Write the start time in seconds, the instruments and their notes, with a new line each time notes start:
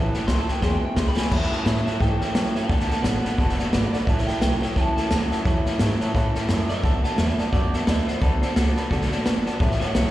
Already playing: upright bass A1, steel-string acoustic guitar A2 E3 F#3 A3 C#4 A4
0.13 steel-string acoustic guitar F#3 A3 C#4 A4, upright piano C#5 E5 A5, muted upright bass stroke, snare
0.27 upright bass C#2, clean electric guitar A2 C6, steel-string acoustic guitar F#3 A3 C#4 A4, upright piano C#5 E5, kick, snare, hi-hat pedal
0.39 clean electric guitar A5
0.48 clean electric guitar A2 G5, steel-string acoustic guitar F#3 A3 C#4 A4, upright piano C#5 E5 A5, muted upright bass stroke, snare
0.62 upright bass E2, clean electric guitar E2 B2 C6, steel-string acoustic guitar E3 G#3 B3 C#4 G#4, upright piano B4 E5 G#5, kick, snare
0.74 clean electric guitar G5
0.82 steel-string acoustic guitar B3 C#4 G#4, upright piano B4 E5 G#5, clean electric guitar G5, muted upright bass stroke
0.96 upright bass C#2, clean electric guitar E2 C#3 C6, steel-string acoustic guitar G#3 B3 C#4 G#4, upright piano B4 G#5, kick, snare, hi-hat pedal
1.08 clean electric guitar B5
1.16 clean electric guitar E2 C#3, steel-string acoustic guitar B3 C#4, upright piano B4 E5 G#5, muted upright bass stroke, snare
1.30 upright bass E2, steel-string acoustic guitar A2 E3 F#3 A3 C#4 A4, upright piano C#5 E5 A5, kick, snare, crash
1.42 snare
1.51 steel-string acoustic guitar F#3 A3 C#4 A4, upright piano C#5 E5 A5, muted upright bass stroke, snare
1.65 upright bass A2, clean electric guitar A2, steel-string acoustic guitar F#3 A3 C#4 A4, upright piano C#5 E5 A5, snare, hi-hat pedal
1.85 clean electric guitar A2 E5, steel-string acoustic guitar F#3 A3 C#4 A4, upright piano C#5 E5 A5, muted upright bass stroke, snare
2.00 upright bass G#2, steel-string acoustic guitar A2 E3 F#3 A3 C#4 A4, upright piano C#5 E5 A5, clean electric guitar G5, kick, snare
2.20 steel-string acoustic guitar F#3 A3 C#4 A4, upright piano C#5 E5 A5, muted upright bass stroke, snare
2.34 upright bass F#2, clean electric guitar A2, steel-string acoustic guitar F#3 A3 C#4 A4, upright piano C#5 E5 A5, snare, hi-hat pedal
2.54 clean electric guitar A2 E5, steel-string acoustic guitar F#3 A3 C#4 A4, upright piano C#5 E5 A5, muted upright bass stroke, snare
2.69 upright bass D2, steel-string acoustic guitar D3 F#3 B3 F#4 A4, clean electric guitar A3 A5, upright piano D5 F#5 A5, kick, snare
2.80 snare
2.89 steel-string acoustic guitar B3 F#4 A4, upright piano D5 F#5 A5, clean electric guitar A5, muted upright bass stroke, snare
3.02 upright bass A1, clean electric guitar D3 F#5, steel-string acoustic guitar F#3 B3 F#4 A4, upright piano D5 F#5 A5, snare, hi-hat pedal
3.23 clean electric guitar D3, steel-string acoustic guitar B3 F#4 A4, upright piano D5 F#5 A5, muted upright bass stroke, snare
3.37 upright bass F#1, steel-string acoustic guitar D3 F#3 B3 F#4 A4, clean electric guitar A3, upright piano D5 F#5 A5, kick, snare
3.49 snare
3.58 steel-string acoustic guitar F#4 A4, upright piano D5 F#5 A5, muted upright bass stroke, snare
3.62 steel-string acoustic guitar B3
3.73 upright bass G#1, clean electric guitar D3, steel-string acoustic guitar F#3 B3 F#4 A4, upright piano D5 F#5 A5, snare, hi-hat pedal
3.92 clean electric guitar D3 D5, steel-string acoustic guitar B3 F#4 A4, upright piano D5 F#5 A5, muted upright bass stroke, snare
4.06 upright bass A1, steel-string acoustic guitar A2 E3 F#3 A3 C#4 A4, upright piano C#5 E5 A5, clean electric guitar E5, kick, snare
4.18 snare
4.26 steel-string acoustic guitar F#3 A3 C#4 A4, upright piano C#5 E5 A5, clean electric guitar G5, muted upright bass stroke, snare
4.41 upright bass B1, clean electric guitar A2 G5, steel-string acoustic guitar F#3 A3 C#4 A4, upright piano C#5 E5 A5, snare, hi-hat pedal
4.61 clean electric guitar A2 G5, steel-string acoustic guitar F#3 A3 C#4 A4, upright piano C#5 E5 A5, muted upright bass stroke, snare
4.76 upright bass C#2, steel-string acoustic guitar A2 E3 F#3 A3 C#4 A4, upright piano C#5 E5 A5, clean electric guitar A5, kick, snare
4.96 steel-string acoustic guitar F#3 A3 C#4 A4, upright piano C#5 E5 A5, clean electric guitar A5, muted upright bass stroke, snare
5.10 upright bass D2, clean electric guitar A2, steel-string acoustic guitar F#3 A3 C#4 A4, upright piano C#5 E5 A5, snare, hi-hat pedal
5.30 clean electric guitar A2, steel-string acoustic guitar F#3 A3 C#4 A4, upright piano C#5 E5 F#5, muted upright bass stroke, snare
5.44 upright bass E2, steel-string acoustic guitar A2 E3 F#3 A3 C#4 A4, upright piano C#5 E5 A5, kick, snare
5.65 steel-string acoustic guitar F#3 A3 C#4 A4, upright piano C#5 E5 A5, muted upright bass stroke, snare
5.79 upright bass G#2, clean electric guitar A2, steel-string acoustic guitar F#3 A3 C#4 A4, upright piano C#5 E5 A5, snare, hi-hat pedal
6.00 clean electric guitar A2, steel-string acoustic guitar F#3 A3 C#4 A4, upright piano C#5 E5 A5, muted upright bass stroke, snare
6.15 steel-string acoustic guitar A2 E3 F#3 A3 C#4 A4, upright bass A2, upright piano C#5 E5 A5, kick, snare
6.34 steel-string acoustic guitar F#3 A3 C#4 A4, upright piano C#5 E5 A5, muted upright bass stroke, snare
6.49 upright bass F#2, clean electric guitar A2, steel-string acoustic guitar F#3 A3 C#4 A4, upright piano C#5 E5 A5, snare, hi-hat pedal
6.69 clean electric guitar A2 E5, steel-string acoustic guitar F#3 A3 C#4 A4, upright piano C#5 E5 A5, muted upright bass stroke, snare
6.83 upright bass D2, steel-string acoustic guitar D3 F#3 B3 F#4 A4, clean electric guitar A3, upright piano D5 F#5 A5, kick, snare
7.03 steel-string acoustic guitar B3 F#4 A4, upright piano D5 F#5 A5, clean electric guitar A5, muted upright bass stroke, snare
7.17 upright bass E2, clean electric guitar D3 E5, steel-string acoustic guitar F#3 B3 F#4 A4, upright piano D5 F#5 A5, snare, hi-hat pedal
7.38 clean electric guitar D3 D5, steel-string acoustic guitar B3 F#4 A4, upright piano D5 F#5 A5, muted upright bass stroke, snare
7.52 upright bass F#2, steel-string acoustic guitar D3 F#3 B3 F#4 A4, clean electric guitar A3 D5, upright piano D5 F#5 A5, kick, snare
7.72 steel-string acoustic guitar B3 F#4 A4, upright piano D5 F#5 A5, muted upright bass stroke, snare
7.87 upright bass D#2, clean electric guitar D3 E5, steel-string acoustic guitar F#3 B3 F#4 A4, upright piano F#5 A5, snare, hi-hat pedal
8.06 clean electric guitar D3 C5, steel-string acoustic guitar B3 F#4 A4, upright piano D5 F#5 A5, muted upright bass stroke, snare
8.21 upright bass D2, steel-string acoustic guitar D3 F#3 B3 F#4 A4, clean electric guitar A3 A4, upright piano D5 F#5 A5, kick, snare
8.41 steel-string acoustic guitar B3 F#4 A4, clean electric guitar C5, upright piano D5 F#5 A5, muted upright bass stroke, snare
8.55 upright bass C#2, clean electric guitar D3 A4, steel-string acoustic guitar F#3 B3 F#4 A4, upright piano D5 F#5, snare, hi-hat pedal
8.76 clean electric guitar D3, steel-string acoustic guitar B3 F#4 A4, upright piano D5 F#5 A5, snare
8.90 upright bass B1, steel-string acoustic guitar D3 F#3 B3 F#4 A4, clean electric guitar A3 A4, upright piano D5 F#5 A5, kick, snare
9.01 snare
9.11 steel-string acoustic guitar B3 F#4 A4, upright piano D5 F#5 A5, muted upright bass stroke, snare
9.25 upright bass F#1, clean electric guitar D3, steel-string acoustic guitar F#3 B3 F#4 A4, upright piano D5 F#5 A5, snare, hi-hat pedal
9.45 clean electric guitar D3, steel-string acoustic guitar B3 F#4 A4, upright piano D5 F#5 A5, muted upright bass stroke, snare
9.60 upright bass A1, steel-string acoustic guitar A2 E3 F#3 A3 C#4 A4, upright piano C#5 E5 A5, kick, snare
9.71 snare
9.80 steel-string acoustic guitar F#3 A3 C#4 A4, clean electric guitar C#5 F#5, upright piano C#5 E5 A5, muted upright bass stroke, snare
9.93 upright bass B1, clean electric guitar A2 C#5 F#5, steel-string acoustic guitar F#3 A3 C#4 A4, upright piano C#5 E5 A5, snare, hi-hat pedal